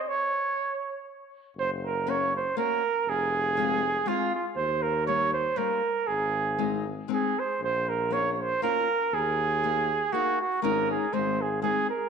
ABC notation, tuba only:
X:1
M:3/4
L:1/8
Q:"Swing" 1/4=119
K:Gblyd
V:1 name="Tuba" clef=bass
z6 | G,,,6 | F,,,6 | E,,6 |
A,,,6 | B,,,6 | E,,6 | A,,,2 A,,,4 |]